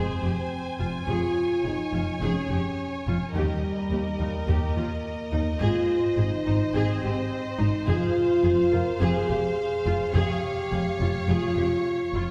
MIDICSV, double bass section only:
0, 0, Header, 1, 2, 480
1, 0, Start_track
1, 0, Tempo, 567108
1, 912, Time_signature, 4, 2, 24, 8
1, 10417, End_track
2, 0, Start_track
2, 0, Title_t, "Double bass section"
2, 0, Program_c, 0, 48
2, 191, Note_on_c, 0, 29, 33
2, 258, Note_off_c, 0, 29, 0
2, 673, Note_on_c, 0, 29, 33
2, 741, Note_off_c, 0, 29, 0
2, 915, Note_on_c, 0, 29, 43
2, 983, Note_off_c, 0, 29, 0
2, 1395, Note_on_c, 0, 29, 37
2, 1462, Note_off_c, 0, 29, 0
2, 1639, Note_on_c, 0, 29, 36
2, 1707, Note_off_c, 0, 29, 0
2, 1874, Note_on_c, 0, 29, 52
2, 1942, Note_off_c, 0, 29, 0
2, 2114, Note_on_c, 0, 29, 34
2, 2181, Note_off_c, 0, 29, 0
2, 2599, Note_on_c, 0, 29, 38
2, 2667, Note_off_c, 0, 29, 0
2, 2844, Note_on_c, 0, 39, 49
2, 2912, Note_off_c, 0, 39, 0
2, 3320, Note_on_c, 0, 39, 41
2, 3387, Note_off_c, 0, 39, 0
2, 3557, Note_on_c, 0, 39, 36
2, 3625, Note_off_c, 0, 39, 0
2, 3793, Note_on_c, 0, 39, 56
2, 3860, Note_off_c, 0, 39, 0
2, 4033, Note_on_c, 0, 39, 38
2, 4101, Note_off_c, 0, 39, 0
2, 4512, Note_on_c, 0, 39, 39
2, 4579, Note_off_c, 0, 39, 0
2, 4751, Note_on_c, 0, 32, 53
2, 4819, Note_off_c, 0, 32, 0
2, 5230, Note_on_c, 0, 32, 47
2, 5298, Note_off_c, 0, 32, 0
2, 5474, Note_on_c, 0, 32, 44
2, 5541, Note_off_c, 0, 32, 0
2, 5706, Note_on_c, 0, 32, 59
2, 5774, Note_off_c, 0, 32, 0
2, 5948, Note_on_c, 0, 32, 45
2, 6016, Note_off_c, 0, 32, 0
2, 6426, Note_on_c, 0, 32, 47
2, 6493, Note_off_c, 0, 32, 0
2, 6666, Note_on_c, 0, 29, 65
2, 6734, Note_off_c, 0, 29, 0
2, 7144, Note_on_c, 0, 29, 46
2, 7211, Note_off_c, 0, 29, 0
2, 7386, Note_on_c, 0, 29, 45
2, 7454, Note_off_c, 0, 29, 0
2, 7628, Note_on_c, 0, 29, 60
2, 7696, Note_off_c, 0, 29, 0
2, 7871, Note_on_c, 0, 29, 50
2, 7938, Note_off_c, 0, 29, 0
2, 8348, Note_on_c, 0, 29, 50
2, 8416, Note_off_c, 0, 29, 0
2, 8588, Note_on_c, 0, 29, 66
2, 8656, Note_off_c, 0, 29, 0
2, 9076, Note_on_c, 0, 29, 52
2, 9144, Note_off_c, 0, 29, 0
2, 9314, Note_on_c, 0, 29, 46
2, 9382, Note_off_c, 0, 29, 0
2, 9549, Note_on_c, 0, 29, 64
2, 9617, Note_off_c, 0, 29, 0
2, 9792, Note_on_c, 0, 29, 45
2, 9860, Note_off_c, 0, 29, 0
2, 10274, Note_on_c, 0, 29, 46
2, 10342, Note_off_c, 0, 29, 0
2, 10417, End_track
0, 0, End_of_file